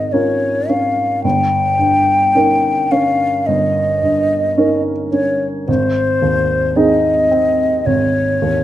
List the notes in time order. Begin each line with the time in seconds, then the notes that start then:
Already playing: G#1 G#2 C#4 D#5
0.12 C#4 F4 A#4 C#5
0.69 C#4 F5
1.24 G1 G5
1.79 G2
2.35 C#4 D#4 A#4
2.91 C#4 F5
3.46 G1 D#5
4.03 G2
4.58 C#4 D#4 A#4
5.11 C#4 C#5
5.67 G#1 C5
6.22 D#2
6.76 C4 D#4 G#4 D#5
7.31 C4
7.86 G#1 C#5
8.42 D#2